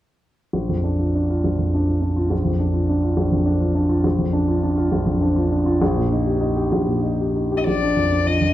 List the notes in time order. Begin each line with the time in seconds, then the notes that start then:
0.53 A#1
0.69 F2
0.84 D4
0.99 F4
1.15 D4
1.30 F4
1.44 A#1
1.58 F2
1.74 D4
1.88 F4
2.02 D4
2.16 F4
2.30 A#1
2.45 F2
2.60 D4
2.74 F4
2.89 D4
3.03 F4
3.17 A#1
3.32 F2
3.45 D4
3.60 F4
3.75 D4
3.89 F4
4.04 A#1
4.18 F2
4.33 D4
4.48 F4
4.63 D4
4.78 F4
4.92 A#1
5.06 F2
5.22 D4
5.36 F4
5.52 D4
5.66 F4
5.82 A#1
5.97 A#2
6.12 D#4
6.27 G4
6.41 D#4
6.56 G4
6.72 A#1
6.87 A#2
7.03 D#4
7.20 G4
7.36 D#4
7.52 G4
7.57 D#5
7.67 A#1 D5
7.82 D4
7.96 F2
8.12 D4
8.26 F4 D#5
8.41 F2